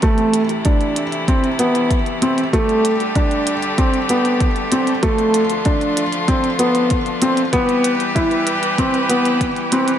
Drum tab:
HH |xxxxxxxxxxxxxxxx|xxxxxxxxxxxxxxxx|xxxxxxxxxxxxxxxx|xxxxxxxxxxxxxxxx|
BD |o---o---o---o---|o---o---o---o---|o---o---o---o---|o---o---o---o---|